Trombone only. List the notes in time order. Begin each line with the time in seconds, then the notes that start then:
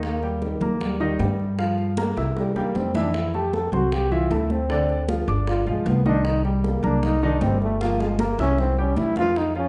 0.04 A#3
0.43 D#3
0.82 G3
2.38 G3
2.58 A#3
2.77 C4
2.96 D4
3.16 E4
3.36 G4
3.54 A4
3.73 F#4
3.94 G4
4.13 F4
4.32 E4
4.52 C4
5.49 F4
5.68 G#3
5.88 B3
6.07 D4
6.26 D#4
6.46 G3
6.65 A#3
6.84 D4
7.05 D#4
7.24 D4
7.44 C4
7.62 A3
7.81 A#3
8.01 G#3
8.21 A#3
8.40 C#4
8.60 C4
8.80 C#4
8.98 E4
9.18 F4
9.38 D#4
9.56 C#4